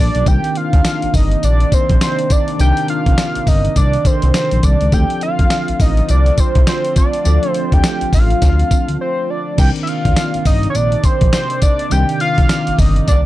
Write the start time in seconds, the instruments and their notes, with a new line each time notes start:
Already playing: analog synth bass A#1, tine electric piano G3 A#3 F4 A4, analog synth pad G3 A#3 F4 A4
0.00 analog synth lead D5
0.15 analog synth bass B1, closed hi-hat
0.25 analog synth bass C2, analog synth pad C3 D#3 A#3 D4, tine electric piano D#3 C4 D4 A#4, analog synth lead G5, kick, closed hi-hat, tambourine
0.44 closed hi-hat
0.55 analog synth lead F5, closed hi-hat
0.73 analog synth bass D2, kick, closed hi-hat
0.85 snare, closed hi-hat, tambourine
1.02 analog synth bass G1, closed hi-hat
1.14 analog synth bass G1, analog synth lead D#5, kick, open hi-hat, tambourine
1.32 closed hi-hat
1.43 analog synth bass A#1, analog synth lead D5, closed hi-hat, tambourine
1.60 closed hi-hat
1.72 analog synth lead C5, kick, closed hi-hat, tambourine
1.89 analog synth bass A#1, kick, closed hi-hat
2.01 analog synth lead C5, snare, closed hi-hat, tambourine
2.19 closed hi-hat
2.30 analog synth lead D5, kick, closed hi-hat, tambourine
2.48 closed hi-hat
2.59 analog synth bass C2, tine electric piano D#3 C4 D4 A#4, analog synth lead G5, closed hi-hat, tambourine
2.77 closed hi-hat
2.88 analog synth lead F5, closed hi-hat
3.06 analog synth bass C2, kick, closed hi-hat
3.18 snare, closed hi-hat, tambourine
3.35 analog synth bass G1, closed hi-hat
3.47 analog synth bass G1, analog synth lead D#5, kick, open hi-hat, tambourine
3.65 closed hi-hat
3.76 analog synth bass C2, analog synth lead D5, kick, closed hi-hat, tambourine
3.93 closed hi-hat
4.05 tine electric piano D#3 C4 D4 A4, analog synth lead C5, kick, closed hi-hat, tambourine
4.13 tine electric piano A#4
4.22 analog synth bass C2, closed hi-hat
4.34 analog synth lead C5, snare, closed hi-hat, tambourine
4.51 analog synth bass A#1, closed hi-hat
4.63 analog synth bass C2, analog synth lead D5, kick, closed hi-hat, tambourine
4.81 analog synth bass C#2, closed hi-hat
4.92 analog synth bass D2, analog synth pad D3 A3 C4 F4, tine electric piano D#3 C4 D4 A4, analog synth lead G5, kick, closed hi-hat, tambourine
4.98 tine electric piano F3
5.10 closed hi-hat
5.21 analog synth lead F5, closed hi-hat
5.39 analog synth bass F2, kick, closed hi-hat
5.50 snare, closed hi-hat, tambourine
5.68 analog synth bass A1, closed hi-hat
5.80 analog synth bass A1, analog synth lead D#5, kick, open hi-hat, tambourine
5.97 closed hi-hat
6.09 analog synth bass C2, analog synth lead D5, closed hi-hat, tambourine
6.26 closed hi-hat
6.38 analog synth lead C5, kick, closed hi-hat, tambourine
6.55 analog synth bass C2, kick, closed hi-hat
6.67 analog synth lead C5, snare, closed hi-hat, tambourine
6.85 closed hi-hat
6.96 analog synth lead D5, kick, closed hi-hat, tambourine
7.13 closed hi-hat
7.24 analog synth bass D2, tine electric piano F3 C4 D4 A4, closed hi-hat, tambourine
7.43 closed hi-hat
7.51 analog synth lead C5, closed hi-hat
7.72 analog synth bass D2, analog synth lead G5, kick, closed hi-hat
7.84 snare, closed hi-hat, tambourine
8.01 analog synth bass A1, closed hi-hat
8.13 analog synth bass A1, analog synth lead F5, kick, open hi-hat, tambourine
8.30 closed hi-hat
8.42 analog synth bass D2, kick, snare, closed hi-hat, tambourine
8.59 closed hi-hat
8.71 kick, closed hi-hat, tambourine
8.89 analog synth bass D2, closed hi-hat
9.01 analog synth lead C5
9.30 analog synth lead D5
9.57 analog synth bass C2, analog synth pad C3 D#3 A#3 D5, tine electric piano D#3 C4 D4 A#4, analog synth lead G5, kick, closed hi-hat, crash, tambourine
9.76 closed hi-hat
9.83 analog synth lead E5
9.87 analog synth lead F5, closed hi-hat
10.05 analog synth bass D2, kick, closed hi-hat
10.16 snare, closed hi-hat, tambourine
10.34 analog synth bass G1, closed hi-hat
10.45 analog synth bass G1, analog synth lead D#5, kick, open hi-hat, tambourine
10.63 closed hi-hat
10.70 analog synth lead C#5
10.75 analog synth bass A#1, analog synth lead D5, closed hi-hat, tambourine
10.92 closed hi-hat
11.03 analog synth lead C5, kick, closed hi-hat, tambourine
11.21 analog synth bass A#1, kick, closed hi-hat
11.33 analog synth lead C5, snare, closed hi-hat, tambourine
11.50 closed hi-hat
11.62 analog synth lead D5, kick, closed hi-hat, tambourine
11.79 closed hi-hat
11.90 analog synth bass C2, tine electric piano D#3 C4 D4 A#4, analog synth lead G5, closed hi-hat, tambourine
12.09 closed hi-hat
12.20 analog synth lead F5, closed hi-hat
12.38 analog synth bass C2, kick, closed hi-hat
12.49 snare, closed hi-hat, tambourine
12.67 analog synth bass G1, closed hi-hat
12.79 analog synth bass G1, analog synth lead D#5, kick, open hi-hat, tambourine
12.96 closed hi-hat
13.08 analog synth bass C2, analog synth lead D5, kick, closed hi-hat, tambourine